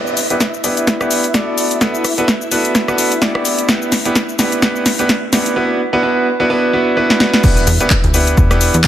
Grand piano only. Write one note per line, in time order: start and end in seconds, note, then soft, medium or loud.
0.00 0.17 B3 medium
0.00 0.17 D4 medium
0.00 0.17 E4 medium
0.00 0.17 G4 medium
0.00 0.17 B4 medium
0.30 0.43 B3 medium
0.30 0.43 D4 medium
0.30 0.43 E4 medium
0.30 0.43 G4 medium
0.30 0.43 B4 loud
0.64 0.98 B3 medium
0.64 0.98 D4 medium
0.64 0.98 E4 medium
0.64 0.98 G4 medium
0.64 0.98 B4 medium
1.01 1.23 B3 medium
1.01 1.24 D4 medium
1.01 1.23 E4 medium
1.01 1.23 G4 medium
1.01 1.23 B4 loud
1.34 1.79 B3 medium
1.34 1.79 D4 medium
1.34 1.79 F#4 medium
1.34 1.79 A4 medium
1.34 1.79 D5 medium
1.81 2.04 B3 medium
1.81 2.04 D4 medium
1.81 2.04 F#4 medium
1.81 2.04 A4 medium
1.81 2.04 B4 medium
2.18 2.31 B3 medium
2.18 2.31 D4 medium
2.18 2.31 F#4 medium
2.18 2.31 A4 medium
2.18 2.31 B4 loud
2.51 2.85 B3 medium
2.51 2.85 D4 medium
2.51 2.85 F#4 medium
2.51 2.85 A4 medium
2.51 2.85 B4 medium
2.88 3.11 B3 medium
2.88 3.11 D4 medium
2.88 3.11 F#4 medium
2.88 3.11 A4 medium
2.88 3.11 B4 loud
3.22 3.66 B3 medium
3.22 3.66 D4 medium
3.22 3.66 E4 medium
3.22 3.66 G4 medium
3.22 3.66 D5 medium
3.69 3.92 B3 medium
3.69 3.92 D4 medium
3.69 3.92 E4 medium
3.69 3.92 G4 medium
3.69 3.92 B4 medium
4.05 4.18 B3 medium
4.05 4.18 D4 medium
4.05 4.18 E4 medium
4.05 4.18 G4 medium
4.05 4.18 B4 medium
4.39 4.61 B3 medium
4.39 4.61 D4 medium
4.39 4.61 E4 medium
4.39 4.61 G4 medium
4.39 4.61 B4 medium
4.62 4.85 B3 medium
4.62 4.85 D4 medium
4.62 4.85 E4 medium
4.62 4.85 G4 medium
4.62 4.85 B4 loud
4.99 5.12 B3 medium
4.99 5.12 D4 medium
4.99 5.12 E4 medium
4.99 5.12 G4 medium
4.99 5.12 B4 loud
5.33 5.55 B3 medium
5.33 5.55 D4 medium
5.33 5.55 E4 medium
5.33 5.55 G4 medium
5.33 5.55 B4 medium
5.56 5.79 B3 medium
5.56 5.79 D4 medium
5.56 5.79 E4 medium
5.56 5.79 F#4 medium
5.56 5.79 B4 loud
5.93 6.01 B3 medium
5.93 6.01 D4 medium
5.93 6.01 E4 medium
5.93 6.01 F#4 medium
5.93 6.01 B4 loud
6.03 6.26 B3 medium
6.03 6.26 D4 medium
6.03 6.26 E4 medium
6.03 6.26 F#4 medium
6.03 6.26 B4 loud
6.40 6.48 B3 medium
6.40 6.48 D4 medium
6.40 6.48 E4 medium
6.40 6.48 F#4 medium
6.40 6.48 B4 loud
6.50 6.72 B3 medium
6.50 6.72 D4 medium
6.50 6.72 E4 medium
6.50 6.72 F#4 medium
6.50 6.72 B4 loud
6.73 6.95 B3 medium
6.73 6.95 D4 medium
6.73 6.95 E4 medium
6.73 6.95 F#4 medium
6.73 6.95 B4 medium
6.97 7.19 B3 medium
6.97 7.19 D4 medium
6.97 7.19 E4 medium
6.97 7.19 F#4 medium
6.97 7.19 B4 loud
7.20 7.42 B3 medium
7.20 7.42 D4 medium
7.20 7.42 E4 medium
7.20 7.42 F#4 medium
7.20 7.42 B4 loud
7.44 7.67 B3 medium
7.44 7.67 D4 medium
7.44 7.67 E4 medium
7.44 7.67 G4 medium
7.44 7.67 B4 loud
7.80 7.93 B3 medium
7.80 7.93 D4 medium
7.80 7.93 E4 medium
7.80 7.93 G4 medium
7.80 7.93 B4 loud
8.14 8.48 B3 medium
8.14 8.48 D4 medium
8.14 8.48 E4 medium
8.14 8.48 G4 medium
8.14 8.48 B4 medium
8.51 8.73 B3 medium
8.51 8.73 D4 medium
8.51 8.73 E4 medium
8.51 8.73 G4 medium
8.51 8.73 B4 loud
8.84 8.88 B3 medium
8.84 8.88 D4 medium
8.84 8.88 E4 medium
8.84 8.88 G4 medium
8.84 8.88 B4 loud